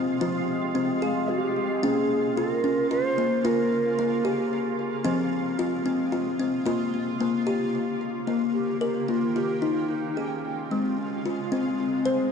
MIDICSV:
0, 0, Header, 1, 4, 480
1, 0, Start_track
1, 0, Tempo, 538600
1, 188, Time_signature, 3, 2, 24, 8
1, 10978, End_track
2, 0, Start_track
2, 0, Title_t, "Ocarina"
2, 0, Program_c, 0, 79
2, 906, Note_on_c, 0, 77, 75
2, 1146, Note_on_c, 0, 67, 95
2, 1160, Note_off_c, 0, 77, 0
2, 1643, Note_on_c, 0, 68, 95
2, 1656, Note_off_c, 0, 67, 0
2, 2108, Note_on_c, 0, 70, 91
2, 2121, Note_off_c, 0, 68, 0
2, 2581, Note_off_c, 0, 70, 0
2, 2587, Note_on_c, 0, 72, 118
2, 3073, Note_on_c, 0, 70, 99
2, 3087, Note_off_c, 0, 72, 0
2, 3786, Note_off_c, 0, 70, 0
2, 7603, Note_on_c, 0, 67, 79
2, 7832, Note_off_c, 0, 67, 0
2, 7848, Note_on_c, 0, 67, 87
2, 8108, Note_on_c, 0, 65, 81
2, 8121, Note_off_c, 0, 67, 0
2, 8350, Note_on_c, 0, 67, 95
2, 8364, Note_off_c, 0, 65, 0
2, 8567, Note_on_c, 0, 65, 90
2, 8581, Note_off_c, 0, 67, 0
2, 8811, Note_on_c, 0, 63, 90
2, 8824, Note_off_c, 0, 65, 0
2, 9063, Note_on_c, 0, 61, 82
2, 9076, Note_off_c, 0, 63, 0
2, 9545, Note_on_c, 0, 60, 69
2, 9558, Note_off_c, 0, 61, 0
2, 9778, Note_on_c, 0, 61, 73
2, 9791, Note_off_c, 0, 60, 0
2, 10153, Note_off_c, 0, 61, 0
2, 10487, Note_on_c, 0, 60, 74
2, 10943, Note_off_c, 0, 60, 0
2, 10978, End_track
3, 0, Start_track
3, 0, Title_t, "Kalimba"
3, 0, Program_c, 1, 108
3, 0, Note_on_c, 1, 53, 84
3, 0, Note_on_c, 1, 60, 79
3, 156, Note_off_c, 1, 53, 0
3, 186, Note_off_c, 1, 60, 0
3, 188, Note_on_c, 1, 53, 72
3, 188, Note_on_c, 1, 65, 85
3, 668, Note_off_c, 1, 65, 0
3, 668, Note_on_c, 1, 60, 82
3, 907, Note_off_c, 1, 60, 0
3, 910, Note_on_c, 1, 68, 74
3, 1388, Note_off_c, 1, 68, 0
3, 1597, Note_off_c, 1, 53, 0
3, 1633, Note_on_c, 1, 61, 89
3, 1638, Note_on_c, 1, 58, 75
3, 2108, Note_off_c, 1, 61, 0
3, 2116, Note_on_c, 1, 65, 81
3, 2349, Note_off_c, 1, 65, 0
3, 2352, Note_on_c, 1, 61, 74
3, 2587, Note_off_c, 1, 61, 0
3, 2593, Note_on_c, 1, 65, 81
3, 2825, Note_off_c, 1, 58, 0
3, 2828, Note_off_c, 1, 65, 0
3, 2835, Note_on_c, 1, 58, 80
3, 3061, Note_off_c, 1, 58, 0
3, 3071, Note_on_c, 1, 58, 78
3, 3073, Note_on_c, 1, 65, 97
3, 3543, Note_off_c, 1, 58, 0
3, 3546, Note_off_c, 1, 65, 0
3, 3553, Note_on_c, 1, 58, 78
3, 3786, Note_off_c, 1, 58, 0
3, 3786, Note_on_c, 1, 67, 78
3, 4261, Note_off_c, 1, 67, 0
3, 4496, Note_on_c, 1, 60, 99
3, 4505, Note_on_c, 1, 53, 78
3, 4976, Note_off_c, 1, 60, 0
3, 4983, Note_on_c, 1, 65, 85
3, 5219, Note_off_c, 1, 65, 0
3, 5219, Note_on_c, 1, 60, 75
3, 5457, Note_off_c, 1, 60, 0
3, 5457, Note_on_c, 1, 65, 75
3, 5696, Note_off_c, 1, 65, 0
3, 5699, Note_on_c, 1, 60, 78
3, 5910, Note_off_c, 1, 53, 0
3, 5932, Note_on_c, 1, 58, 69
3, 5937, Note_off_c, 1, 60, 0
3, 5939, Note_on_c, 1, 65, 93
3, 6411, Note_off_c, 1, 58, 0
3, 6416, Note_off_c, 1, 65, 0
3, 6421, Note_on_c, 1, 58, 80
3, 6654, Note_on_c, 1, 67, 77
3, 6658, Note_off_c, 1, 58, 0
3, 7134, Note_off_c, 1, 67, 0
3, 7374, Note_on_c, 1, 58, 76
3, 7853, Note_on_c, 1, 70, 69
3, 7855, Note_off_c, 1, 58, 0
3, 8094, Note_off_c, 1, 70, 0
3, 8096, Note_on_c, 1, 58, 65
3, 8336, Note_off_c, 1, 58, 0
3, 8341, Note_on_c, 1, 65, 68
3, 8574, Note_on_c, 1, 63, 70
3, 8579, Note_off_c, 1, 65, 0
3, 9057, Note_off_c, 1, 63, 0
3, 9064, Note_on_c, 1, 68, 58
3, 9543, Note_off_c, 1, 68, 0
3, 9548, Note_on_c, 1, 56, 67
3, 10026, Note_off_c, 1, 56, 0
3, 10031, Note_on_c, 1, 65, 73
3, 10266, Note_on_c, 1, 60, 87
3, 10267, Note_off_c, 1, 65, 0
3, 10743, Note_on_c, 1, 72, 68
3, 10746, Note_off_c, 1, 60, 0
3, 10978, Note_off_c, 1, 72, 0
3, 10978, End_track
4, 0, Start_track
4, 0, Title_t, "Ambient pad"
4, 0, Program_c, 2, 92
4, 0, Note_on_c, 2, 48, 76
4, 0, Note_on_c, 2, 56, 68
4, 0, Note_on_c, 2, 65, 81
4, 1594, Note_off_c, 2, 56, 0
4, 1596, Note_off_c, 2, 48, 0
4, 1643, Note_on_c, 2, 49, 76
4, 1646, Note_on_c, 2, 58, 68
4, 4466, Note_off_c, 2, 65, 0
4, 4478, Note_off_c, 2, 49, 0
4, 4479, Note_off_c, 2, 58, 0
4, 4496, Note_on_c, 2, 56, 69
4, 4501, Note_on_c, 2, 48, 79
4, 4501, Note_on_c, 2, 65, 85
4, 5919, Note_off_c, 2, 56, 0
4, 5920, Note_on_c, 2, 58, 74
4, 5922, Note_off_c, 2, 48, 0
4, 5925, Note_on_c, 2, 49, 78
4, 7347, Note_off_c, 2, 65, 0
4, 7353, Note_off_c, 2, 58, 0
4, 7356, Note_off_c, 2, 49, 0
4, 7380, Note_on_c, 2, 58, 68
4, 7382, Note_on_c, 2, 51, 73
4, 7385, Note_on_c, 2, 67, 84
4, 8806, Note_off_c, 2, 58, 0
4, 8807, Note_off_c, 2, 51, 0
4, 8809, Note_off_c, 2, 67, 0
4, 8836, Note_on_c, 2, 65, 80
4, 8847, Note_on_c, 2, 49, 70
4, 8847, Note_on_c, 2, 56, 63
4, 10258, Note_off_c, 2, 65, 0
4, 10263, Note_off_c, 2, 49, 0
4, 10276, Note_on_c, 2, 63, 84
4, 10278, Note_on_c, 2, 48, 75
4, 10978, Note_off_c, 2, 48, 0
4, 10978, Note_off_c, 2, 56, 0
4, 10978, Note_off_c, 2, 63, 0
4, 10978, End_track
0, 0, End_of_file